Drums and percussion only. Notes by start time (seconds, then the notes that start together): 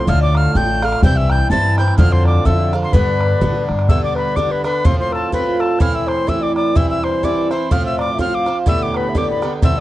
0.07 bodhran
0.35 bodhran
0.55 bodhran
0.82 bodhran
0.92 bodhran
1.03 bodhran
1.30 bodhran
1.50 bodhran
1.78 bodhran
1.88 bodhran
1.98 bodhran
2.25 bodhran
2.45 bodhran
2.73 bodhran
2.83 bodhran
2.93 bodhran
3.21 bodhran
3.41 bodhran
3.69 bodhran
3.79 bodhran
3.89 bodhran
4.16 bodhran
4.37 bodhran
4.64 bodhran
4.85 bodhran
5.12 bodhran
5.33 bodhran
5.60 bodhran
5.80 bodhran
6.08 bodhran
6.28 bodhran
6.56 bodhran
6.76 bodhran
7.04 bodhran
7.23 bodhran
7.51 bodhran
7.71 bodhran
7.99 bodhran
8.19 bodhran
8.46 bodhran
8.66 bodhran
8.94 bodhran
9.15 bodhran
9.42 bodhran
9.62 bodhran